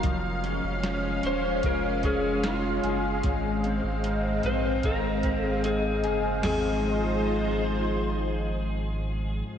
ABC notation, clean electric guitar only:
X:1
M:4/4
L:1/8
Q:1/4=75
K:Ab
V:1 name="Clean electric guitar"
F, D F D F D F A | A,, C E C E C E A | [A,,F,A,CEA]8 |]